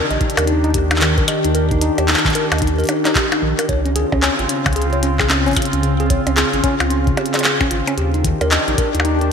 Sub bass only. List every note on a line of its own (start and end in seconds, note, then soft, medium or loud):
0.11 0.18 A#1 medium
0.37 1.19 D#2 medium
1.18 1.25 A#1 medium
1.45 1.91 D#2 medium
1.98 2.15 D#2 loud
2.25 2.32 A#1 medium
2.52 2.84 D#2 medium
3.42 3.54 A#1 loud
3.69 4.05 C#2 medium
4.12 4.30 C#2 loud
4.39 4.46 G#1 medium
4.66 5.48 C#2 medium
5.46 5.54 G#1 loud
5.73 6.19 C#2 medium
6.27 6.44 C#2 loud
6.53 6.61 G#1 loud
6.80 7.13 C#2 medium
7.71 7.83 G#1 loud
7.98 8.33 D#2 loud
8.41 8.58 D#2 medium
8.68 8.75 A#1 medium
8.95 9.32 D#2 medium